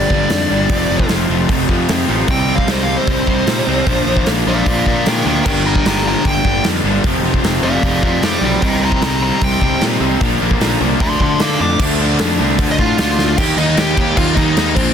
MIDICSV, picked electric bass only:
0, 0, Header, 1, 2, 480
1, 0, Start_track
1, 0, Tempo, 396301
1, 850, Time_signature, 4, 2, 24, 8
1, 18092, End_track
2, 0, Start_track
2, 0, Title_t, "Picked electric bass"
2, 0, Program_c, 0, 34
2, 125, Note_on_c, 0, 31, 83
2, 299, Note_off_c, 0, 31, 0
2, 369, Note_on_c, 0, 41, 96
2, 542, Note_off_c, 0, 41, 0
2, 616, Note_on_c, 0, 31, 86
2, 787, Note_off_c, 0, 31, 0
2, 841, Note_on_c, 0, 29, 99
2, 1017, Note_off_c, 0, 29, 0
2, 1084, Note_on_c, 0, 29, 89
2, 1259, Note_off_c, 0, 29, 0
2, 1335, Note_on_c, 0, 29, 92
2, 1506, Note_off_c, 0, 29, 0
2, 1569, Note_on_c, 0, 29, 91
2, 1742, Note_off_c, 0, 29, 0
2, 1810, Note_on_c, 0, 29, 101
2, 1983, Note_off_c, 0, 29, 0
2, 2045, Note_on_c, 0, 41, 85
2, 2220, Note_off_c, 0, 41, 0
2, 2292, Note_on_c, 0, 41, 97
2, 2464, Note_off_c, 0, 41, 0
2, 2535, Note_on_c, 0, 33, 93
2, 2707, Note_off_c, 0, 33, 0
2, 2765, Note_on_c, 0, 36, 92
2, 3113, Note_off_c, 0, 36, 0
2, 3233, Note_on_c, 0, 36, 85
2, 3585, Note_off_c, 0, 36, 0
2, 3720, Note_on_c, 0, 36, 95
2, 3897, Note_off_c, 0, 36, 0
2, 3960, Note_on_c, 0, 36, 75
2, 4137, Note_off_c, 0, 36, 0
2, 4199, Note_on_c, 0, 46, 95
2, 4376, Note_off_c, 0, 46, 0
2, 4448, Note_on_c, 0, 36, 78
2, 4622, Note_off_c, 0, 36, 0
2, 4686, Note_on_c, 0, 34, 92
2, 4861, Note_off_c, 0, 34, 0
2, 4930, Note_on_c, 0, 34, 93
2, 5104, Note_off_c, 0, 34, 0
2, 5172, Note_on_c, 0, 34, 90
2, 5345, Note_off_c, 0, 34, 0
2, 5406, Note_on_c, 0, 34, 93
2, 5581, Note_off_c, 0, 34, 0
2, 5644, Note_on_c, 0, 34, 100
2, 5819, Note_off_c, 0, 34, 0
2, 5889, Note_on_c, 0, 46, 82
2, 6063, Note_off_c, 0, 46, 0
2, 6129, Note_on_c, 0, 46, 99
2, 6303, Note_off_c, 0, 46, 0
2, 6364, Note_on_c, 0, 38, 87
2, 6540, Note_off_c, 0, 38, 0
2, 6609, Note_on_c, 0, 31, 85
2, 6955, Note_off_c, 0, 31, 0
2, 7092, Note_on_c, 0, 31, 93
2, 7437, Note_off_c, 0, 31, 0
2, 7572, Note_on_c, 0, 31, 99
2, 7745, Note_off_c, 0, 31, 0
2, 7807, Note_on_c, 0, 31, 86
2, 7982, Note_off_c, 0, 31, 0
2, 8051, Note_on_c, 0, 41, 93
2, 8224, Note_off_c, 0, 41, 0
2, 8281, Note_on_c, 0, 31, 86
2, 8458, Note_off_c, 0, 31, 0
2, 8526, Note_on_c, 0, 29, 84
2, 8701, Note_off_c, 0, 29, 0
2, 8758, Note_on_c, 0, 29, 90
2, 8936, Note_off_c, 0, 29, 0
2, 9000, Note_on_c, 0, 29, 94
2, 9177, Note_off_c, 0, 29, 0
2, 9227, Note_on_c, 0, 29, 99
2, 9409, Note_off_c, 0, 29, 0
2, 9482, Note_on_c, 0, 29, 94
2, 9658, Note_off_c, 0, 29, 0
2, 9724, Note_on_c, 0, 41, 79
2, 9899, Note_off_c, 0, 41, 0
2, 9952, Note_on_c, 0, 41, 91
2, 10132, Note_off_c, 0, 41, 0
2, 10185, Note_on_c, 0, 35, 89
2, 10367, Note_off_c, 0, 35, 0
2, 10447, Note_on_c, 0, 36, 87
2, 10793, Note_off_c, 0, 36, 0
2, 10917, Note_on_c, 0, 36, 101
2, 11267, Note_off_c, 0, 36, 0
2, 11404, Note_on_c, 0, 36, 93
2, 11579, Note_off_c, 0, 36, 0
2, 11643, Note_on_c, 0, 36, 78
2, 11818, Note_off_c, 0, 36, 0
2, 11883, Note_on_c, 0, 46, 88
2, 12058, Note_off_c, 0, 46, 0
2, 12119, Note_on_c, 0, 36, 86
2, 12295, Note_off_c, 0, 36, 0
2, 12368, Note_on_c, 0, 34, 98
2, 12541, Note_off_c, 0, 34, 0
2, 12610, Note_on_c, 0, 34, 87
2, 12782, Note_off_c, 0, 34, 0
2, 12844, Note_on_c, 0, 34, 101
2, 13019, Note_off_c, 0, 34, 0
2, 13090, Note_on_c, 0, 36, 103
2, 13262, Note_off_c, 0, 36, 0
2, 13325, Note_on_c, 0, 38, 106
2, 13499, Note_off_c, 0, 38, 0
2, 13562, Note_on_c, 0, 50, 83
2, 13737, Note_off_c, 0, 50, 0
2, 13808, Note_on_c, 0, 50, 97
2, 13981, Note_off_c, 0, 50, 0
2, 14049, Note_on_c, 0, 41, 87
2, 14222, Note_off_c, 0, 41, 0
2, 14283, Note_on_c, 0, 38, 98
2, 14727, Note_off_c, 0, 38, 0
2, 14774, Note_on_c, 0, 41, 84
2, 14992, Note_off_c, 0, 41, 0
2, 15016, Note_on_c, 0, 36, 91
2, 15233, Note_off_c, 0, 36, 0
2, 15245, Note_on_c, 0, 38, 103
2, 15467, Note_off_c, 0, 38, 0
2, 15489, Note_on_c, 0, 45, 86
2, 15709, Note_off_c, 0, 45, 0
2, 15737, Note_on_c, 0, 38, 91
2, 16174, Note_off_c, 0, 38, 0
2, 16206, Note_on_c, 0, 39, 97
2, 16436, Note_off_c, 0, 39, 0
2, 16444, Note_on_c, 0, 39, 93
2, 16675, Note_off_c, 0, 39, 0
2, 16684, Note_on_c, 0, 39, 95
2, 17144, Note_off_c, 0, 39, 0
2, 17166, Note_on_c, 0, 39, 105
2, 17395, Note_off_c, 0, 39, 0
2, 17406, Note_on_c, 0, 39, 85
2, 17632, Note_off_c, 0, 39, 0
2, 17639, Note_on_c, 0, 39, 89
2, 17872, Note_off_c, 0, 39, 0
2, 17885, Note_on_c, 0, 34, 95
2, 18092, Note_off_c, 0, 34, 0
2, 18092, End_track
0, 0, End_of_file